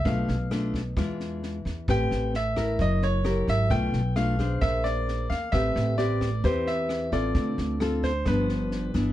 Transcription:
<<
  \new Staff \with { instrumentName = "Grand piano" } { \time 4/4 \key a \minor \tempo 4 = 132 f''4 r2. | g''4 e''4 dis''8 cis''4 e''8 | g''4 f''4 e''8 d''4 f''8 | e''4 d''4 c''8 e''4 d''8~ |
d''4 r8 c''8 b'4. r8 | }
  \new Staff \with { instrumentName = "Nylon-string guitar" } { \time 4/4 \key a \minor << { <a d' f'>8 r8 <a d' f'>8 r8 <gis d' f'>4. r8 | <c' g' b'>4 r8 <e' bes'>4. <e' g' ais'>4 | <a d' f'>8 r8 <a d' f'>8 <d' gis' c''>2 r8 | <c' g' b'>4 <c' g' b'>8 r8 <c' g' b'>4. <c' f' a'>8~ |
<c' f' a'>4 <c' f' a'>8 r8 <f b d'>4. <e b d'>8 | } \\ { b,2 e2 | a2 fis2 | b,2 bes2 | a2 e2 |
d2 g,2 | } >> }
  \new Staff \with { instrumentName = "Upright bass" } { \clef bass \time 4/4 \key a \minor b,,8 b,,4. e,4. e,8 | a,,8 a,,4. fis,,4. gis,,8 | b,,8 b,,4. bes,,4. e,8 | a,,8 a,,4. e,4. a,,8 |
d,8 d,4. g,,4. g,,8 | }
  \new DrumStaff \with { instrumentName = "Drums" } \drummode { \time 4/4 <bd sn>8 sn8 <ss sn>8 <bd sn>8 <bd ss sn>8 sn8 sn8 <bd sn>8 | <bd ss sn>8 sn8 sn8 <bd ss sn>8 <bd sn>8 sn8 <ss sn>8 <bd sn>8 | <bd sn>8 sn8 <ss sn>8 <bd sn>8 <bd ss sn>8 sn8 sn8 <bd sn>8 | <bd ss sn>8 sn8 sn8 <bd ss sn>8 <bd sn>8 sn8 <ss sn>8 <bd sn>8 |
<bd sn>8 sn8 <ss sn>8 <bd sn>8 <bd ss sn>8 sn8 sn8 <bd sn>8 | }
>>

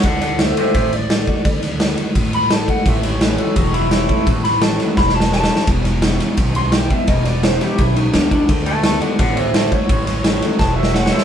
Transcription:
<<
  \new Staff \with { instrumentName = "Clean electric guitar" } { \time 4/4 \key a \major \tempo 4 = 170 <d'' fis''>8 <d'' fis''>8 <c'' e''>8 <c'' e''>8 <c'' e''>8 d''4.~ | d''4. r4 b''8 a''8 fis''8 | e''8 cis''8 b'8 a'8 fis'8 e'8 e'4 | r8 b''8 a''8 r8 b''8 a''8 a''4 |
r2 r8 c'''8 g''8 e''8 | dis''8 d''8 c''8 g'8 e'8 dis'8 d'8 d'8 | r8 <e'' a''>8 <e'' a''>8 <d'' fis''>8 <d'' fis''>8 <c'' e''>8 <c'' e''>8 cis''8~ | cis''4. r8 a''8 e''8 fis''8 <cis' e''>8 | }
  \new Staff \with { instrumentName = "Steel-string acoustic guitar" } { \time 4/4 \key a \major << { r4 <d a d' fis'>4 r4 <d a d' fis'>8 <d' fis'>8 | r4 <d a d' fis'>8 <d' fis'>8 r4 <d a d' fis'>8 <d' fis'>8 | r4 <e a cis' e'>4 r4 <e a cis' e'>8 <cis' e'>8 | r4 <e a cis' e'>8 <cis' e'>8 r4 <e a cis' e'>8 <cis' e'>8 |
r4 <e gis b e'>8 <b e'>8 r4 <e gis b e'>8 <b e'>8 | r4 <e gis b e'>8 <b e'>8 r4 <e gis b e'>8 <b e'>8 | r4 <d a d' fis'>8 <d' fis'>8 r4 <d a d' fis'>8 <d' fis'>8 | r4 <e a cis' e'>8 <cis' e'>8 r4 <e a cis' e'>4 | } \\ { d2 a,2 | d2 a,2 | a,2 e,2 | a,2 e,2 |
e,2 b,2 | e,2 b,2 | d2 a,2 | a,2 e,2 | } >> }
  \new Staff \with { instrumentName = "Clean electric guitar" } { \clef bass \time 4/4 \key a \major r1 | r1 | <a, e>8 <a, e>8 <a, fis>8 <a, fis>8 <a, fis>8 <a, fis>8 <a, e>8 <a, e>8 | <a, e>8 <a, e>8 <a, fis>8 <a, fis>8 <a, fis>8 <a, fis>8 <a, e>8 <a, e>8 |
<e, b,>8 <e, b,>8 <e, cis>8 <e, cis>8 <e, cis>8 <e, cis>8 <e, b,>8 <e, b,>8 | <e, b,>8 <e, b,>8 <e, cis>8 <e, cis>8 <e, cis>8 <e, cis>8 <e, b,>8 <e, b,>8 | <d a>8 <d a>8 <d b>8 <d b>8 <d b>8 <d b>8 <d a>8 <d a>8 | <a, e>8 <a, e>8 <a, fis>8 <a, fis>8 <a, fis>8 <a, fis>8 <a, e>8 <a, e>8 | }
  \new Staff \with { instrumentName = "Upright bass" } { \clef bass \time 4/4 \key a \major d,2 a,,2 | d,2 a,,2 | a,,2 e,,2 | a,,2 e,,2 |
e,,2 b,,2 | e,,2 b,,4 cis,4 | d,2 a,,2 | a,,2 e,,2 | }
  \new DrumStaff \with { instrumentName = "Drums" } \drummode { \time 4/4 <bd cymr>8 <cymr sn>8 <cymr sn>8 cymr8 <bd cymr sn>8 cymr8 <cymr sn>8 <bd cymr>8 | <bd cymr sn>8 <cymr sn>8 <cymr sn>8 cymr8 <bd cymr>8 cymr8 <cymr sn>8 <bd cymr>8 | <bd cymr sn>8 <cymr sn>8 <cymr sn>8 cymr8 <bd cymr>8 cymr8 <cymr sn>8 <bd cymr>8 | <bd cymr>8 <cymr sn>8 <cymr sn>8 <cymr sn>8 \tuplet 3/2 { <bd sn>8 sn8 sn8 sn8 sn8 sn8 } |
<bd cymr sn>8 <cymr sn>8 <cymr sn>8 <cymr sn>8 <bd cymr sn>8 cymr8 <cymr sn>8 <bd cymr>8 | <bd cymr sn>8 <cymr sn>8 <cymr sn>8 <cymr sn>8 <bd cymr sn>8 cymr8 <cymr sn>8 <bd cymr>8 | <bd cymr sn>8 cymr8 <cymr sn>8 cymr8 <bd cymr sn>8 cymr8 <cymr sn>8 <bd cymr>8 | <bd cymr>8 <cymr sn>8 <cymr sn>8 <cymr sn>8 \tuplet 3/2 { <bd sn>8 r8 sn8 sn8 sn8 sn8 } | }
>>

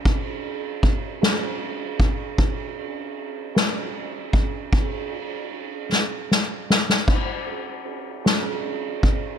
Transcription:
\new DrumStaff \with { instrumentName = "Drums" } \drummode { \time 6/8 \tempo 4. = 51 <bd cymr>8 cymr8 <bd cymr>8 <cymr sn>8 cymr8 <bd cymr>8 | <bd cymr>8 cymr8 cymr8 <cymr sn>8 cymr8 <bd cymr>8 | <bd cymr>8 cymr8 cymr8 sn8 sn8 sn16 sn16 | <cymc bd>8 cymr8 cymr8 <cymr sn>8 cymr8 <bd cymr>8 | }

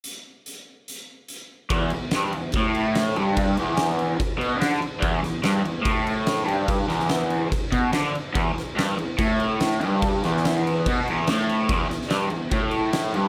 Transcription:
<<
  \new Staff \with { instrumentName = "Overdriven electric guitar" } { \clef bass \time 4/4 \key e \minor \tempo 4 = 144 r1 | e,8 e,8 g,8 e,8 a,4. g,8~ | g,8 e,4. r8 b,8 d8 r8 | e,8 e,8 g,8 e,8 a,4. g,8~ |
g,8 e,4. r8 b,8 d8 r8 | e,8 e,8 g,8 e,8 a,4. g,8~ | g,8 e,4. b,8 e,8 a,4 | e,8 e,8 g,8 e,8 a,4. g,8 | }
  \new DrumStaff \with { instrumentName = "Drums" } \drummode { \time 4/4 hh4 hh4 hh4 hh4 | <cymc bd>8 cymc8 <cymc sn>8 cymc8 <cymc bd>8 cymc8 <cymc sn>8 cymc8 | <cymc bd>8 cymc8 <cymc sn>8 cymc8 <cymc bd>8 cymc8 <cymc sn>8 cymc8 | <cymc bd>8 <cymc sn>8 <cymc sn>8 cymc8 <cymc bd>8 cymc8 <cymc sn>8 cymc8 |
<cymc bd>8 <cymc sn>16 sn16 <cymc sn>8 cymc8 <cymc bd>8 <cymc bd>8 <cymc sn>8 cymc8 | <cymc bd>8 <cymc sn>8 <cymc sn>8 cymc8 <cymc bd>8 cymc8 <cymc sn>8 cymc8 | <cymc bd>8 <cymc sn>16 sn16 <cymc sn>8 cymc8 <cymc bd>8 cymc8 <cymc sn>8 cymc8 | <cymc bd>8 <cymc sn>16 sn16 <cymc sn>8 cymc8 <cymc bd>8 cymc8 <cymc sn>8 cymc8 | }
>>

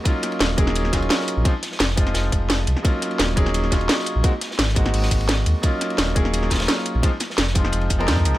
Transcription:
<<
  \new Staff \with { instrumentName = "Grand piano" } { \time 4/4 \key ees \dorian \tempo 4 = 172 <ges bes des' ees' f'>4. <ges bes des' ees' aes'>16 r8. <ges bes des' ees' f'>16 r4 r16 | <f aes c' ees' f'>16 r4 r16 <f aes c' ees' f'>2~ <f aes c' ees' f'>8 | <ges bes des' ees' f'>4. <ges bes des' ees' aes'>16 r8. <ges bes des' ees' f'>16 r4 r16 | <aes bes c' ees' ges'>16 r4 r16 <aes bes c' ees' ges'>2~ <aes bes c' ees' ges'>8 |
<ges bes des' ees' f'>4. <ges bes des' ees' aes'>16 r8. <ges bes des' ees' f'>16 r4 r16 | <f aes c' ees' f'>16 r4 r16 <f aes c' ees' f'>4~ <f aes c' ees' f'>16 <f aes c' ees' bes'>16 r4 | }
  \new Staff \with { instrumentName = "Sub bass" } { \clef bass \time 4/4 \key ees \dorian r4 ees,,2 r8. bes,,16 | r4 f,,4 f,,8 f,,4 c,16 r16 | r4 ees,,2 r8. bes,,16 | r4 aes,,4 aes,,8 aes,,4 ees,16 r16 |
r4 ees,,2 r8. bes,,16 | r4 f,,4 f,,8 f,,8 f,8 c,16 r16 | }
  \new DrumStaff \with { instrumentName = "Drums" } \drummode { \time 4/4 <hh bd cymr>8 <hh cymr sn>16 cymr16 <hh cymr sn>8 <hh bd cymr>16 sn16 <hh cymr>16 sn16 <hh bd cymr sn>16 cymr16 <hh cymr sn>16 sn16 <hh cymr>8 | <hh bd cymr>8 <hh cymr sn>16 sn16 <hh cymr sn>16 sn16 <hh bd cymr>16 <cymr sn>16 <hh cymr sn>8 <hh bd cymr>8 <hh cymr sn>8 <hh cymr>16 sn16 | <hh bd cymr>8 <hh cymr sn>16 cymr16 <hh cymr sn>8 <hh bd cymr>16 sn16 <hh cymr>16 sn16 <hh bd cymr sn>16 cymr16 <hh cymr sn>16 sn16 <hh cymr>8 | <hh bd cymr>8 <hh cymr sn>16 sn16 <hh cymr sn>16 sn16 <hh bd cymr>16 <cymr sn>16 <hh hho>16 sn16 <hh bd cymr>16 cymr16 <hh cymr sn>8 <hh cymr>8 |
<hh bd cymr>8 <hh cymr sn>16 cymr16 <hh cymr sn>8 <hh bd cymr>16 sn16 <hh cymr>16 sn16 <hh bd cymr sn>32 <cymr sn>32 <cymr sn>16 <hh cymr sn>16 sn16 <hh cymr>8 | <hh bd cymr>8 <hh cymr sn>16 sn16 <hh cymr sn>16 sn16 <hh bd cymr>16 sn16 <hh cymr>16 cymr16 <hh bd cymr>16 cymr16 <hh cymr sn>16 bd16 <hh cymr>16 sn16 | }
>>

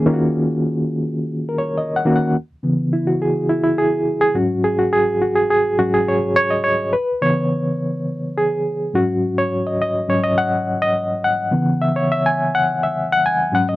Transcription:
<<
  \new Staff \with { instrumentName = "Reed electric piano" } { \time 4/4 \key cis \dorian \tempo 4 = 105 r2 \tuplet 3/2 { r8. ais'16 cis''8 dis''8 fis''8 fis''8 } | r4 e'16 fis'16 gis'8 e'16 e'16 gis'8. gis'16 fis'8 | gis'16 fis'16 gis'8 fis'16 gis'16 gis'8 fis'16 gis'16 cis''8 cis''16 dis''16 cis''8 | b'8 cis''4 r4 gis'4 fis'8~ |
fis'16 cis''8 dis''16 dis''8 cis''16 dis''16 fis''8. dis''8. fis''8~ | fis''8 e''16 cis''16 e''16 gis''8 fis''8 e''8 fis''16 gis''8 fis''16 dis''16 | }
  \new Staff \with { instrumentName = "Reed electric piano" } { \clef bass \time 4/4 \key cis \dorian <dis ais cis' eis' fis'>4. r2 <dis ais cis' fis'>8 | r8 <cis e b>8 r2 r8 <gis, fis cis'>8 | r2 <gis, fis cis'>8 r4. | r8 <cis e b>4. r4. <gis, fis cis'>8~ |
<gis, fis cis'>4 r8 <gis, fis cis'>8 r2 | <cis e b>2.~ <cis e b>8 <gis, fis cis'>8 | }
>>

